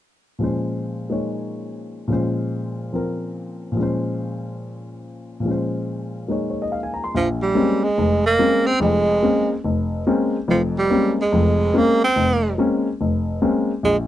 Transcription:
0.39 2.06 A#2 soft
0.39 2.07 F3 soft
0.39 1.08 G#3 soft
0.39 2.10 C#4 soft
0.44 2.10 C5 soft
1.10 2.08 G#3 soft
1.10 2.08 A#3 soft
1.10 2.09 D#4 soft
1.10 2.10 C#5 soft
2.08 3.70 A#2 soft
2.08 2.91 F3 soft
2.08 3.75 G#3 soft
2.12 3.79 C#4 soft
2.12 3.79 C5 soft
2.92 3.73 F3 soft
2.92 3.77 C4 soft
2.92 3.78 A#4 soft
3.72 5.38 A#2 soft
3.72 5.41 F3 soft
3.77 5.44 G#3 soft
3.77 5.47 C#4 soft
3.83 5.48 C5 soft
5.40 7.10 A#2 soft
5.40 7.12 F3 soft
5.46 6.27 G#3 soft
5.46 7.15 C#4 soft
5.51 7.16 C5 soft
6.28 7.13 G#3 soft
6.28 7.13 A#3 soft
6.28 7.14 D#4 soft
6.28 6.49 C#5 soft
6.50 6.63 C#5 soft
6.62 6.76 D#5 soft
6.72 6.91 F5 soft
6.83 7.00 G#5 soft
6.94 7.06 A#5 soft
7.04 7.18 C6 soft
7.15 7.50 A#1 medium
7.15 7.28 F3 medium
7.42 7.85 G3 medium
7.55 7.84 G#3 medium
7.55 7.84 A#3 soft
7.55 7.84 C4 soft
7.55 7.84 C#4 medium
7.84 8.25 G#3 medium
7.98 8.34 F1 medium
8.26 8.68 A#3 loud
8.39 8.68 G#3 medium
8.39 8.68 A#3 soft
8.39 8.68 C4 soft
8.39 8.68 C#4 medium
8.66 8.81 C4 medium
8.80 9.17 F1 medium
8.80 9.17 F2 medium
8.80 9.61 G#3 medium
9.23 9.51 G#3 soft
9.23 9.52 A#3 soft
9.23 9.52 C4 soft
9.23 9.52 C#4 medium
9.64 10.01 F1 medium
10.07 10.35 G#3 medium
10.07 10.35 A#3 soft
10.07 10.35 C4 medium
10.07 10.35 C#4 medium
10.48 10.84 F1 medium
10.48 10.84 F2 medium
10.48 10.62 F3 medium
10.79 11.16 G3 medium
10.90 11.19 G#3 soft
10.90 11.19 A#3 soft
10.90 11.19 C4 soft
10.90 11.19 C#4 medium
11.21 11.79 G#3 medium
11.32 11.68 F1 medium
11.32 11.68 F2 medium
11.74 12.02 G#3 medium
11.74 12.03 A#3 medium
11.74 12.03 A#3 loud
11.74 12.03 C4 medium
11.74 12.03 C#4 medium
12.04 12.55 C4 medium
12.16 12.52 F1 medium
12.58 12.86 G#3 medium
12.58 12.87 A#3 soft
12.58 12.87 C4 soft
12.58 12.87 C#4 medium
13.01 13.36 F1 medium
13.42 13.70 G#3 medium
13.42 13.70 A#3 soft
13.42 13.70 C4 soft
13.42 13.70 C#4 medium
13.83 14.07 A#1 medium
13.83 13.97 G#3 medium

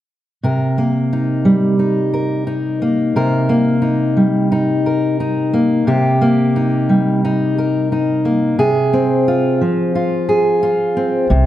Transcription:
0.43 3.15 C3 soft
0.43 2.13 A#4 soft
0.78 2.81 A#3 soft
1.13 1.79 D#4 soft
1.45 4.16 G3 soft
1.79 2.46 D#4 soft
2.13 3.16 A#4 soft
2.47 3.81 D#4 soft
2.82 3.49 A#3 soft
3.16 5.86 C3 soft
3.16 4.85 A#4 soft
3.49 5.52 A#3 soft
3.82 4.51 D#4 soft
4.17 5.83 G3 soft
4.52 5.19 D#4 soft
4.86 5.84 A#4 soft
5.20 5.84 D#4 soft
5.53 6.20 A#3 soft
5.87 8.57 C3 medium
5.87 7.57 G4 soft
6.21 8.24 A#3 soft
6.56 7.23 D#4 soft
6.89 8.55 G3 soft
7.24 7.91 D#4 soft
7.58 8.56 A#4 soft
7.92 8.55 D#4 soft
8.25 8.59 A#3 soft
8.59 9.61 C3 soft
8.59 10.27 G#4 soft
8.93 10.95 C4 soft
9.28 9.94 F4 soft
9.61 11.31 F3 soft
9.95 10.61 F4 soft
10.29 11.27 G#4 soft
10.63 11.27 F4 soft
10.97 11.27 C4 soft
11.30 11.46 C2 medium
11.30 11.46 C3 medium

